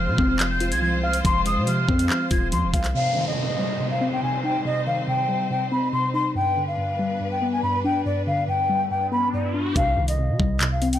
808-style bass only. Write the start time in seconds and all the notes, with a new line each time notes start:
0.08 C3
0.18 F1
0.72 C2
1.25 F1
1.57 C3
1.89 F2
2.31 D#1
2.52 F2
2.63 D#1
2.74 C2
9.76 C2
9.97 C2
10.29 C3
10.40 C2